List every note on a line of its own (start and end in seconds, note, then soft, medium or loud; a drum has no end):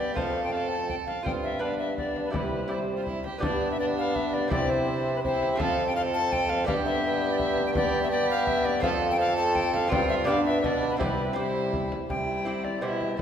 0.00 0.13 G2 medium
0.00 0.15 B3 medium
0.00 0.12 D4 soft
0.00 0.18 G4 medium
0.00 0.12 B4 soft
0.00 0.14 D5 medium
0.00 frame drum soft
0.14 0.96 F2 medium
0.14 1.20 A3 soft
0.14 0.52 C4 medium
0.14 1.21 F4 soft
0.14 0.52 A4 medium
0.14 1.21 C5 soft
0.14 0.42 F5 medium
0.14 frame drum medium
0.18 0.94 F2 soft
0.44 0.53 G5 medium
0.52 0.98 C4 medium
0.52 1.23 A4 medium
0.52 0.71 F5 medium
0.69 0.88 A5 medium
0.89 0.95 G5 loud
0.89 frame drum soft
1.07 1.24 F5 medium
1.07 frame drum soft
1.23 2.30 G2 medium
1.23 2.30 G2 soft
1.23 1.58 C4 medium
1.23 1.59 F4 soft
1.23 1.62 F4 medium
1.23 1.59 C5 soft
1.23 1.31 G5 medium
1.23 frame drum medium
1.43 1.63 E5 medium
1.59 1.96 B3 medium
1.59 2.30 D4 soft
1.59 1.96 D4 medium
1.59 2.31 B4 soft
1.59 1.78 F5 medium
1.78 1.96 E5 medium
1.97 2.33 B3 medium
1.97 2.35 D4 medium
1.97 2.24 D5 medium
1.97 frame drum soft
2.16 frame drum soft
2.25 2.29 B4 medium
2.30 3.21 C3 soft
2.30 3.23 C3 medium
2.30 2.70 G3 soft
2.30 2.67 E4 soft
2.30 2.70 E4 medium
2.30 2.67 G4 soft
2.30 2.72 B4 medium
2.30 frame drum medium
2.68 3.24 G3 soft
2.68 3.39 E4 soft
2.68 2.78 E4 medium
2.68 3.39 G4 soft
2.68 2.75 D5 medium
2.74 3.07 C5 medium
2.97 3.05 F4 medium
3.05 3.24 E4 medium
3.05 frame drum soft
3.24 3.43 G4 medium
3.24 frame drum medium
3.38 4.47 G2 medium
3.38 4.46 B3 soft
3.38 4.47 D4 soft
3.38 4.47 G4 medium
3.43 4.54 G2 medium
3.43 3.77 B3 medium
3.43 3.77 D4 medium
3.43 3.69 D5 loud
3.43 frame drum medium
3.71 3.79 E5 loud
3.80 4.51 B3 medium
3.80 4.52 D4 medium
3.80 3.86 D5 loud
3.98 4.17 F5 loud
4.15 4.35 E5 medium
4.15 frame drum soft
4.34 4.51 D5 loud
4.34 frame drum soft
4.48 5.56 C3 medium
4.48 5.54 C4 medium
4.48 5.22 C4 medium
4.48 5.55 E4 soft
4.48 5.23 E4 medium
4.48 5.56 G4 soft
4.48 4.71 D5 loud
4.48 frame drum medium
4.52 5.59 C3 medium
4.70 5.15 C5 medium
5.16 5.20 B4 medium
5.24 5.59 C4 medium
5.24 5.59 E4 medium
5.24 5.51 C5 loud
5.24 frame drum medium
5.43 frame drum medium
5.52 6.62 C4 medium
5.52 5.62 E5 medium
5.57 6.64 F2 medium
5.57 6.69 F2 medium
5.57 5.95 C4 medium
5.57 6.63 F4 soft
5.57 6.64 A4 soft
5.57 5.95 A4 medium
5.57 5.86 F5 loud
5.57 frame drum medium
5.87 5.95 G5 loud
5.96 6.66 C4 medium
5.96 6.66 A4 medium
5.96 6.02 F5 loud
6.14 6.34 A5 loud
6.32 6.51 G5 loud
6.32 frame drum medium
6.49 6.67 F5 loud
6.49 frame drum medium
6.64 8.85 G2 medium
6.64 8.79 G2 medium
6.64 8.78 B3 medium
6.64 7.73 B3 medium
6.64 8.79 D4 medium
6.64 8.79 G4 medium
6.64 7.73 G4 medium
6.64 6.73 F5 loud
6.64 frame drum medium
6.85 7.29 E5 loud
7.31 7.38 D5 loud
7.39 7.66 E5 loud
7.39 frame drum soft
7.58 frame drum medium
7.66 7.71 G5 loud
7.75 8.11 B3 medium
7.75 8.10 G4 medium
7.75 8.02 D5 loud
7.75 frame drum medium
8.03 8.10 E5 loud
8.11 8.85 B3 medium
8.11 8.82 G4 medium
8.11 8.29 D5 loud
8.30 8.48 F5 loud
8.47 8.67 E5 loud
8.47 frame drum medium
8.65 8.83 D5 loud
8.65 frame drum medium
8.80 9.90 F2 medium
8.80 9.87 F2 medium
8.80 9.86 C4 medium
8.80 9.19 C4 medium
8.80 9.87 F4 medium
8.80 9.88 A4 medium
8.80 9.18 A4 medium
8.80 8.89 F5 loud
8.80 frame drum medium
9.11 9.20 G5 loud
9.18 9.90 C4 medium
9.18 9.89 A4 medium
9.18 9.36 F5 loud
9.37 9.57 A5 loud
9.55 9.73 G5 loud
9.55 frame drum soft
9.74 9.93 F5 loud
9.74 frame drum medium
9.88 10.25 G2 medium
9.88 10.24 G2 medium
9.88 10.24 C4 medium
9.88 10.29 C4 medium
9.88 10.25 F4 medium
9.88 10.28 F4 medium
9.88 10.25 G4 medium
9.92 10.08 G5 loud
9.92 frame drum medium
10.09 10.15 E5 loud
10.24 10.65 G2 medium
10.24 10.60 G2 medium
10.24 10.96 B3 medium
10.24 10.63 B3 medium
10.24 10.97 D4 medium
10.24 10.62 D4 medium
10.24 10.97 G4 medium
10.24 10.44 F5 loud
10.45 10.62 E5 loud
10.62 10.99 B2 medium
10.62 10.97 B2 medium
10.62 10.99 B3 medium
10.62 11.01 D4 medium
10.62 10.90 D5 loud
10.62 10.67 E5 loud
10.62 frame drum medium
10.82 frame drum medium
10.90 10.98 B4 medium
10.97 11.90 C3 medium
10.97 11.88 C3 medium
10.97 11.36 G3 medium
10.97 11.32 C4 medium
10.97 11.33 E4 soft
10.97 11.37 E4 medium
10.97 11.35 G4 medium
10.97 11.04 C5 loud
10.97 frame drum medium
11.03 11.37 B4 loud
11.33 12.06 C4 medium
11.33 12.07 E4 medium
11.33 11.91 E4 medium
11.33 12.07 G4 medium
11.33 11.73 C5 medium
11.37 11.91 G3 medium
11.73 frame drum medium
11.92 frame drum medium
12.09 12.84 C3 medium
12.09 12.78 C3 soft
12.09 12.78 G3 medium
12.09 12.78 E4 medium
12.09 12.66 G5 medium
12.09 frame drum medium
12.45 12.78 C4 soft
12.45 12.78 E4 soft
12.45 12.79 G4 soft
12.64 12.85 D5 medium
12.64 frame drum soft
12.81 13.14 B2 medium
12.81 13.18 B2 medium
12.81 13.20 G3 medium
12.81 13.16 E4 medium
12.81 13.15 E4 soft
12.81 13.15 G4 soft
12.81 13.14 C5 soft
12.81 13.20 E5 medium
13.01 frame drum soft
13.17 13.22 A2 soft
13.17 13.22 A3 soft
13.17 13.22 E4 medium
13.17 13.22 C5 medium